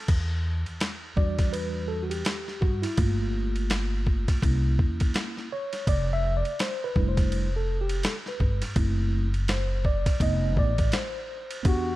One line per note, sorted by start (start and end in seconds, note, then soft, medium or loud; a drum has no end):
0.08 0.62 E2 medium
0.08 kick loud
0.08 crash medium
0.08 ride medium
0.66 ride soft
0.80 snare loud
0.80 hi-hat pedal soft
0.80 ride medium
1.16 2.21 E2 medium
1.16 2.21 G3 medium
1.16 2.21 D4 soft
1.16 2.02 F#4 medium
1.16 1.51 D5 medium
1.16 kick medium
1.39 kick medium
1.39 snare soft
1.39 ride medium
1.53 1.90 B4 medium
1.53 ride medium
1.88 2.02 A4 medium
2.03 2.11 F#4 medium
2.10 2.63 G4 medium
2.10 ride medium
2.25 snare loud
2.25 hi-hat pedal soft
2.25 ride medium
2.48 snare soft
2.61 2.82 G2 medium
2.61 2.84 F#4 medium
2.61 kick medium
2.82 2.96 E4 medium
2.82 snare soft
2.82 ride medium
2.97 4.24 G1 loud
2.97 4.38 A3 medium
2.97 4.39 A#3 soft
2.97 4.39 F4 medium
2.97 kick loud
2.97 ride medium
3.56 ride soft
3.70 snare loud
3.70 hi-hat pedal medium
3.70 ride medium
4.07 kick medium
4.28 kick loud
4.28 snare soft
4.28 ride medium
4.42 4.76 C2 loud
4.42 5.47 A#3 medium
4.42 5.47 C#4 soft
4.42 5.47 E4 medium
4.42 kick medium
4.42 ride medium
4.79 5.12 E2 medium
4.79 kick medium
5.00 kick medium
5.00 ride medium
5.14 snare loud
5.14 hi-hat pedal medium
5.14 ride medium
5.37 snare soft
5.52 5.89 C#5 loud
5.73 snare soft
5.73 ride medium
5.87 6.41 F1 loud
5.87 6.10 D5 loud
5.87 kick loud
5.87 ride medium
6.13 6.35 E5 loud
6.37 6.61 D5 medium
6.45 ride soft
6.59 6.85 C5 medium
6.59 snare loud
6.59 hi-hat pedal soft
6.59 ride medium
6.84 7.06 B4 loud
6.96 8.00 F1 medium
6.96 7.47 G3 medium
6.96 7.47 A3 soft
6.96 7.47 D4 soft
6.96 7.47 E4 medium
6.96 kick medium
7.09 7.53 C5 medium
7.17 kick loud
7.17 snare soft
7.17 ride medium
7.32 ride medium
7.56 7.81 A4 medium
7.81 8.05 G4 medium
7.89 ride medium
8.03 8.15 A4 medium
8.03 snare loud
8.03 hi-hat pedal soft
8.03 ride medium
8.26 8.62 B4 medium
8.26 snare soft
8.40 8.60 G1 medium
8.40 kick medium
8.62 snare soft
8.62 ride medium
8.76 10.02 F#1 loud
8.76 9.27 A3 medium
8.76 9.27 C4 soft
8.76 9.27 E4 medium
8.76 kick loud
8.76 ride medium
9.34 ride soft
9.48 9.86 C5 medium
9.48 snare loud
9.48 hi-hat pedal medium
9.48 ride medium
9.85 10.22 D5 medium
9.85 kick medium
10.06 kick loud
10.06 snare soft
10.06 ride medium
10.20 10.57 F1 loud
10.20 10.71 A3 soft
10.20 10.72 B3 medium
10.20 10.72 D#4 medium
10.20 10.59 D#5 loud
10.20 kick medium
10.20 ride medium
10.57 10.90 A1 medium
10.57 10.95 D5 loud
10.57 kick medium
10.78 kick medium
10.78 ride medium
10.92 11.62 C5 medium
10.92 snare loud
10.92 hi-hat pedal medium
10.92 ride medium
11.51 ride medium
11.63 11.96 E2 loud
11.63 11.91 B3 medium
11.63 11.92 D4 medium
11.63 11.92 F#4 medium
11.63 11.93 G4 medium
11.63 kick loud
11.63 ride medium
11.68 11.96 F#4 medium